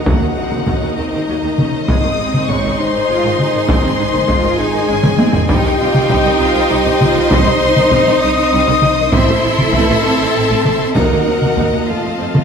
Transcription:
Already playing: string section A#3 D#4 A#4 D#5, viola section D#4, violin section D#5 A#5
0.06 double bass section D#2, viola section F#3, cello section A#3, french horn section F#4, violin section F#5, taiko
0.22 double bass section D#2, viola section D#3
0.37 double bass section D#2, viola section D#3, cello section C4
0.52 double bass section D#2, viola section D#3, taiko mid
0.66 double bass section D#2, viola section F#3, cello section C#4, taiko
0.82 double bass section D#2, viola section D#3
0.96 double bass section D#2, viola section D#3, cello section C4, french horn section D#4, violin section D#5
1.12 double bass section D#2, viola section D#3
1.28 double bass section D#2, viola section F#3, cello section A#3
1.43 double bass section D#2, viola section D#3
1.58 double bass section D#2, viola section D#3, cello section C#4, taiko mid
1.73 double bass section D#2, viola section D#3
1.87 double bass section G#1, string section G#3 D#4 G#4 D#5, viola section G#3 D#4, cello section C4, violin section D#5 C6 D#6, french horn section D#5, taiko
2.04 double bass section G#1, viola section D#3
2.19 double bass section G#1, viola section C3
2.34 double bass section G#1, viola section D#3, taiko mid
2.48 double bass section G#1, viola section G#3, french horn section C#5, violin section C#6, taiko
2.65 double bass section G#1, viola section D#3
2.79 double bass section G#1, viola section C3, cello section D#4, french horn section C5, violin section C6
2.94 double bass section G#1, viola section D#3
3.09 double bass section G#1, viola section G#3, cello section F4
3.25 double bass section G#1, viola section D#3
3.39 double bass section G#1, viola section C3, cello section D#4, taiko mid
3.54 double bass section G#1, viola section D#3
3.68 double bass section G#1, viola section G#3, cello section C4, french horn section C5, violin section C6, taiko
3.82 double bass section G#1, viola section D#3
3.98 double bass section G#1, viola section C3, cello section D#4
4.13 double bass section G#1, viola section D#3, taiko mid
4.28 double bass section G#1, viola section G#3, cello section F4, taiko
4.43 double bass section G#1, viola section D#3
4.58 double bass section G#1, viola section C3, cello section D#4, french horn section G#4, violin section G#5
4.73 double bass section G#1, viola section D#3
4.88 double bass section G#1, viola section G#3, cello section C#4
5.04 double bass section G#1, viola section D#3, taiko mid
5.19 double bass section G#1, viola section C3, cello section C4, taiko high
5.34 double bass section G#1, viola section D#3, taiko low
5.48 double bass section C2, viola section G3 D#4, string section C4 D#4 C5 D#5, cello section D#4, french horn section G4, violin section D#5 G5 C6, taiko
5.64 double bass section C2, viola section D#3
5.79 double bass section C2, viola section C3, cello section F4
5.94 double bass section C2, viola section D#3, taiko mid
6.09 double bass section C2, viola section G3, cello section D#4, taiko
6.24 double bass section C2, viola section D#3
6.39 double bass section C2, viola section C3, cello section F4
6.55 double bass section C2, viola section D#3
6.70 double bass section C2, viola section G3, cello section D#4
6.85 double bass section C2, viola section D#3
7.00 double bass section C2, viola section C3, cello section F4, taiko mid
7.16 double bass section C2, viola section D#3
7.30 double bass section C2, viola section G3, cello section D#4, french horn section C5, violin section C6, taiko
7.47 double bass section C2, viola section D#3
7.62 double bass section C2, viola section C3
7.77 double bass section C2, viola section D#3, taiko mid
7.91 double bass section C2, viola section G3, taiko
8.07 double bass section C2, viola section D#3
8.21 double bass section C2, viola section C3, french horn section D#5, violin section D#6
8.37 double bass section C2, viola section D#3
8.52 double bass section C2, viola section G3
8.67 double bass section C2, viola section D#3
8.82 double bass section C2, viola section C3, taiko mid
8.98 double bass section C2, viola section D#3
9.11 double bass section A1, viola section C4 A4, cello section E4, string section E4 A4 E5, french horn section C5, violin section E5 C6, taiko
9.29 double bass section A1, viola section A3
9.44 double bass section A1, viola section E3
9.58 double bass section A1, viola section A3, taiko mid
9.73 double bass section A1, viola section C4, french horn section B4, violin section B5, taiko
9.89 double bass section A1, viola section A3
10.03 double bass section A1, viola section E3, cello section C4, french horn section A4, violin section A5
10.20 double bass section A1, viola section A3
10.35 double bass section A1, viola section C4
10.50 double bass section A1, viola section A3
10.65 double bass section A1, viola section E3, taiko mid
10.80 double bass section A1, viola section A3
10.94 double bass section D#2, timpani D#3, string section A#3 D#4 A#4 D#5, viola section D#4 A#4, cello section D#4, french horn section F#4, violin section D#5 F#5 A#5, taiko
11.12 double bass section D#2, viola section A#3
11.27 double bass section D#2, viola section F#3, cello section C4
11.42 double bass section D#2, viola section A#3, taiko mid
11.57 double bass section D#2, cello section A#3, viola section D#4, taiko
11.73 double bass section D#2, viola section A#3
11.87 double bass section F2, viola section F3 F4, cello section A3, string section C4 F4 A4, french horn section F4, violin section F5 A5
12.03 double bass section F2, viola section A3
12.18 double bass section F2, viola section C4
12.34 double bass section F2, viola section A3, taiko mid

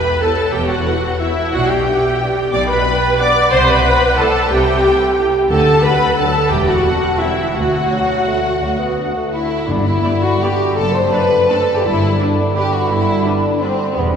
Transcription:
Already playing: viola section B4, violin section B5
0.21 french horn section B3 E4, viola section A4, flute C#5, violin section A5
0.53 double bass section E1, cello section E2, viola section G4, violin section G5
0.69 viola section F#4, violin section F#5
0.86 french horn section B3 E4, flute B4
1.20 french horn section B3 E4, viola section E4, violin section E5
1.52 double bass section B1, cello section B2, viola section F#4, flute D5, violin section F#5
1.69 viola section G4, violin section G5
1.86 french horn section B3 D4, flute E5
2.21 french horn section B3 D4, flute D5
2.53 double bass section B1, cello section B2, viola section D5, violin section D6
2.68 viola section B4, violin section B5
2.85 french horn section B3 D4, flute G5
3.18 french horn section B3 D4, viola section D5, flute F#5, violin section D6
3.51 double bass section C2, cello section C3, viola section C5, violin section C6
3.66 viola section B4, violin section B5
3.83 french horn section A3 E4
4.17 french horn section A3 E4, viola section A4, violin section A5
4.50 double bass section C2, cello section C3, viola section G4, flute E5, violin section G5
4.83 french horn section A3 E4, flute G5
5.19 french horn section A3 E4
5.50 double bass section D2, timpani D3, cello section D3, viola section A4, flute F#5, violin section A5
5.83 french horn section F#3 D4, viola section B4, flute F#5, violin section B5
6.17 french horn section F#3 D4, viola section A4, violin section A5
6.49 double bass section E1, cello section E2, viola section G4, flute E5, violin section G5
6.66 viola section F#4, violin section F#5
6.84 french horn section G3 C4, flute A5
7.18 french horn section G3 C4, viola section E4, violin section E5, flute G5
7.54 double bass section D2, cello section D2, viola section F#4, violin section F#5, flute F#5
7.91 bassoon F#3, french horn section A3 D4
8.28 bassoon A3, french horn section A3 D4
8.61 double bass section D2, cello section D2, bassoon F#3
8.79 bassoon B3
8.99 french horn section A3 D4
9.17 bassoon A3
9.33 french horn section A3 D4 E4, violin section E4
9.68 double bass section G1, timpani G2, cello section G2, bassoon D3, violin section D4, french horn section D4, flute B5
9.85 french horn section E4, violin section E4
10.04 viola section B3 G4, violin section D5
10.22 french horn section F#4, violin section F#4
10.41 viola section B3 G4, french horn section G4, violin section G4 D5
10.77 double bass section F#1, cello section F#2, violin section A4, french horn section A4, flute A5
10.93 french horn section C5, violin section C5
11.12 viola section A3 D4, violin section B4 D5, french horn section B4
11.49 viola section A3 D4, french horn section A4, violin section A4 D5
11.76 french horn section G4, violin section G4
11.84 double bass section G1, cello section G2, bassoon D3, violin section E4, french horn section E4, flute B5
12.19 viola section G3 D4, french horn section D4, violin section D4 B4
12.56 viola section G3 D4, violin section G4 B4, french horn section G4
12.73 violin section F#4, french horn section F#4
12.88 double bass section G1, cello section G2, violin section E4, french horn section E4
13.24 viola section G3 D4, violin section D4 B4, french horn section D4
13.61 viola section G3 D4, violin section C4 B4, french horn section C4
13.95 double bass section E1, cello section E2, bassoon G3, french horn section B3, violin section B3, flute B5
14.12 french horn section C4, violin section C4

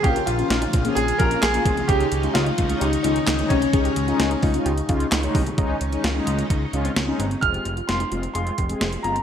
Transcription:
Already playing: string machine C#3 F3 A#3 C4 F4
0.03 analog synth bass A#1, analog polysynth A#3 C#4 F4, grand piano G4, synth pluck G#4, kick, closed hi-hat
0.16 synth pluck G4, closed hi-hat
0.26 analog synth bass A#1, grand piano F4, closed hi-hat
0.39 analog polysynth A#3 C#4 F4, synth pluck F4, closed hi-hat
0.50 analog synth bass A#1, synth pluck D#4, snare, closed hi-hat
0.62 synth pluck D#4, closed hi-hat
0.73 analog synth bass A#1, synth pluck F4, kick, closed hi-hat
0.85 analog polysynth A#3 C#4 G#4, closed hi-hat
0.95 analog synth bass A#1, grand piano G#4, synth pluck G#4, closed hi-hat
1.08 closed hi-hat
1.18 analog synth bass A#1, analog polysynth A#3 C#4 F4, synth pluck G4, grand piano A#4, kick, closed hi-hat
1.31 closed hi-hat
1.41 analog synth bass A#1, synth pluck F4, grand piano G#4, snare, clap, closed hi-hat
1.54 analog polysynth A#3 C#4 F4, closed hi-hat
1.66 analog synth bass C2, synth pluck G#4, kick, closed hi-hat
1.77 closed hi-hat
1.87 analog synth bass C#2, string machine G#2 D#3 C#4 D#4, analog polysynth G#3 C#4 D#4, grand piano G4, synth pluck G#4, kick, closed hi-hat
2.00 synth pluck G4, closed hi-hat
2.12 analog synth bass C#2, closed hi-hat
2.23 analog polysynth G#3 C#4 D#4, synth pluck F4, closed hi-hat
2.34 analog synth bass C#2, synth pluck D#4, grand piano F4, snare, closed hi-hat
2.46 synth pluck D#4, closed hi-hat
2.58 analog synth bass C#2, synth pluck F4, kick, closed hi-hat
2.69 analog polysynth G#3 C#4 D#4, closed hi-hat
2.80 analog synth bass C#2, grand piano D#4, synth pluck G4, closed hi-hat
2.93 closed hi-hat
3.03 analog synth bass C#2, analog polysynth G#3 C#4 D#4, grand piano D#4, synth pluck F4, closed hi-hat
3.16 closed hi-hat
3.27 analog synth bass C#2, synth pluck D#4, snare, clap, closed hi-hat
3.39 analog polysynth G#3 C#4 D#4, closed hi-hat
3.49 analog synth bass C2, grand piano C#4, synth pluck G4, kick, closed hi-hat
3.62 closed hi-hat
3.73 analog synth bass C#2, analog polysynth G#3 C#4 D#4, synth pluck G#4, kick, closed hi-hat
3.85 synth pluck G4, closed hi-hat
3.96 analog synth bass C#2, closed hi-hat
4.08 analog polysynth G#3 C#4 D#4, synth pluck F4, closed hi-hat
4.20 analog synth bass C#2, synth pluck D#4, snare, closed hi-hat
4.31 synth pluck D#4, closed hi-hat
4.41 analog synth bass C#2, grand piano D#4, synth pluck F4, kick, open hi-hat
4.54 analog polysynth G#3 C#4 F4, closed hi-hat
4.66 analog synth bass C#2, synth pluck G4, closed hi-hat
4.78 closed hi-hat
4.89 analog synth bass C#2, analog polysynth G#3 C#4 F4, synth pluck F4, kick, closed hi-hat
5.00 closed hi-hat
5.12 analog synth bass C#2, synth pluck D#4, snare, clap, closed hi-hat
5.23 analog polysynth G#3 C#4 D#4, closed hi-hat
5.35 analog synth bass C2, synth pluck G4, kick, open hi-hat
5.47 closed hi-hat
5.58 analog synth bass C#2, string machine G#2 C#3 D#3 C#4 D#4, analog polysynth G#3 C#4 D#4, synth pluck D#4, kick, closed hi-hat
5.70 synth pluck C#4
5.81 analog synth bass C#2, synth pluck C#4, closed hi-hat
5.93 analog polysynth G#3 C#4 D#4, closed hi-hat
6.04 analog synth bass C#2, synth pluck F4, snare, closed hi-hat
6.16 analog polysynth G#3 C#4 D#4
6.27 analog synth bass C#2, synth pluck F4, closed hi-hat
6.39 closed hi-hat
6.50 analog synth bass C#2, synth pluck D#4, kick, closed hi-hat
6.73 analog synth bass C#2, analog polysynth G#3 C#4 F4, synth pluck D#4, closed hi-hat
6.85 synth pluck C4, closed hi-hat
6.96 analog synth bass C#2, snare, closed hi-hat
7.08 analog polysynth G#3 C#4 D#4, synth pluck C#4
7.19 analog synth bass G1, synth pluck C4, closed hi-hat
7.31 closed hi-hat
7.41 analog synth bass F1, analog polysynth G#3 C4 F4, synth pluck G#4, grand piano F6, kick, closed hi-hat
7.54 synth pluck G4, closed hi-hat
7.65 analog synth bass F1, closed hi-hat
7.77 synth pluck F4, closed hi-hat
7.88 analog synth bass F1, analog polysynth G#3 C4 F4, synth pluck D#4, grand piano C6, snare, closed hi-hat
8.00 synth pluck D#4, closed hi-hat
8.12 analog synth bass F1, analog polysynth G#3 C4 F4, synth pluck F4, closed hi-hat
8.23 closed hi-hat
8.34 analog synth bass F1, analog polysynth G#3 C4 F4, synth pluck G#4, grand piano C6, closed hi-hat
8.47 closed hi-hat
8.58 analog synth bass F1, synth pluck G4, kick, closed hi-hat
8.69 analog polysynth G#3 C4 G#4, closed hi-hat
8.81 analog synth bass F1, synth pluck F4, snare, closed hi-hat
8.93 closed hi-hat
9.03 analog synth bass G1, analog polysynth G#3 C4 F4, synth pluck G#4, grand piano A#5, closed hi-hat
9.16 closed hi-hat

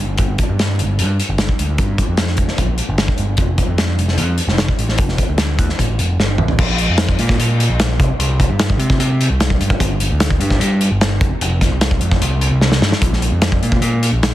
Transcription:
Already playing: picked electric bass G1
0.18 picked electric bass G1, kick, closed hi-hat
0.38 kick, closed hi-hat
0.49 picked electric bass G2
0.59 snare, closed hi-hat
0.79 picked electric bass G1, closed hi-hat
0.99 picked electric bass G2, closed hi-hat
1.20 closed hi-hat
1.29 picked electric bass G1
1.38 snare, closed hi-hat
1.49 kick
1.59 picked electric bass D2, closed hi-hat
1.78 picked electric bass G2, kick, closed hi-hat
1.98 kick, closed hi-hat
2.09 picked electric bass F2
2.17 snare, closed hi-hat
2.28 snare
2.37 picked electric bass F1, kick, closed hi-hat
2.48 snare
2.58 picked electric bass A#1, kick, closed hi-hat
2.78 closed hi-hat
2.89 picked electric bass G1
2.98 snare, closed hi-hat
3.08 kick
3.18 picked electric bass G1, closed hi-hat
3.37 picked electric bass F1, kick, closed hi-hat
3.58 kick, closed hi-hat
3.67 picked electric bass F2
3.78 snare, closed hi-hat
3.98 picked electric bass F1, closed hi-hat
4.08 snare
4.17 picked electric bass F2, closed hi-hat
4.38 closed hi-hat
4.47 picked electric bass F1, snare
4.58 snare, closed hi-hat
4.68 kick
4.78 picked electric bass A1, closed hi-hat
4.89 snare
4.98 picked electric bass F1, kick, closed hi-hat
5.09 snare
5.18 kick, closed hi-hat
5.29 picked electric bass D2
5.38 snare, closed hi-hat
5.59 picked electric bass D#2, kick, closed hi-hat
5.69 snare
5.79 picked electric bass A1, kick, closed hi-hat
5.99 picked electric bass F1, closed hi-hat
6.20 picked electric bass G1, snare
6.38 picked electric bass A1, mid tom
6.48 floor tom
6.58 picked electric bass A#1, kick, crash
6.78 closed hi-hat
6.88 picked electric bass F2
6.98 snare, closed hi-hat
7.09 kick
7.19 picked electric bass A#2, closed hi-hat
7.29 kick, snare
7.38 picked electric bass A#2, closed hi-hat
7.60 closed hi-hat
7.70 picked electric bass A#1
7.80 snare, closed hi-hat
8.00 picked electric bass C2, kick, closed hi-hat
8.19 picked electric bass C2, closed hi-hat
8.40 kick, closed hi-hat
8.49 picked electric bass G2
8.59 snare, closed hi-hat
8.70 kick
8.78 picked electric bass C3, closed hi-hat
8.90 kick, snare
9.00 picked electric bass C3, closed hi-hat
9.21 closed hi-hat
9.30 picked electric bass C2
9.40 snare, closed hi-hat
9.50 kick
9.60 picked electric bass G2, closed hi-hat
9.70 kick
9.80 picked electric bass G1, kick, closed hi-hat
10.00 closed hi-hat
10.11 picked electric bass D2
10.20 snare, closed hi-hat
10.30 kick
10.40 picked electric bass G2, closed hi-hat
10.50 kick, snare
10.60 picked electric bass G2, closed hi-hat
10.81 closed hi-hat
10.91 picked electric bass G1
11.01 snare, closed hi-hat
11.21 picked electric bass F1, kick, closed hi-hat
11.41 picked electric bass F1, closed hi-hat
11.61 kick, snare, closed hi-hat
11.72 picked electric bass C2
11.81 snare, closed hi-hat
11.91 kick
12.01 picked electric bass F2, closed hi-hat
12.11 kick, snare
12.22 picked electric bass C2, closed hi-hat
12.41 closed hi-hat
12.52 picked electric bass C2
12.61 snare
12.72 snare
12.82 picked electric bass G2, snare
12.92 snare
13.02 picked electric bass A#1, kick, closed hi-hat
13.13 snare
13.22 closed hi-hat
13.32 picked electric bass F2
13.42 snare, closed hi-hat
13.52 kick
13.62 picked electric bass A#2, closed hi-hat
13.72 kick
13.82 picked electric bass A#2, closed hi-hat
14.03 closed hi-hat
14.12 picked electric bass A#1
14.23 snare, closed hi-hat

